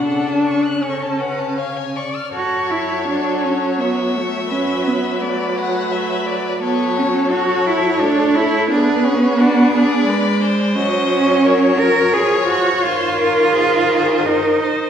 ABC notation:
X:1
M:3/4
L:1/16
Q:1/4=85
K:F#m
V:1 name="Violin"
A4 A2 B2 c2 d2 | c8 e4- | e4 d2 f2 e2 d2 | c4 c8 |
B4 d8 | [K:Gblyd] e4 d8- | d4 c8 |]
V:2 name="Violin"
f a c' f' c' a f a ^e g c' ^e' | A8 c4 | B12 | A12 |
G4 F2 G2 B2 ^B2- | [K:Gblyd] ^B4 _B2 B2 d4 | c2 B2 A4 B2 c2 |]
V:3 name="Cello"
C,8- C,2 z2 | F2 E2 D2 C2 B,2 A,2 | C2 B,2 A,8 | B,2 C2 F2 E2 D2 E2 |
D2 C2 D6 z2 | [K:Gblyd] D6 B2 A2 G2 | F8 E4 |]
V:4 name="Viola" clef=bass
D4 C6 z2 | F,12 | F,12 | F,8 A,4 |
B,8 G,4 | [K:Gblyd] G,8 F,4 | E,12 |]